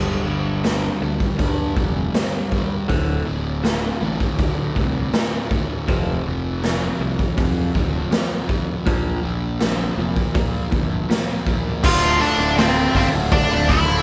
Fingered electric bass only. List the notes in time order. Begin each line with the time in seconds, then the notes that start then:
Already playing: G1
0.24 G1
1.01 D2
1.38 G2
1.76 F1
2.89 D1
3.26 D1
4.01 A1
4.38 D2
4.75 C2
5.89 F1
6.26 F1
7.00 C2
7.37 F2
7.75 D1
8.86 A#1
9.25 A#1
9.97 F1
10.34 A#2
10.71 G1
11.84 D1
12.38 D1
12.94 G1
13.13 D1
13.51 D1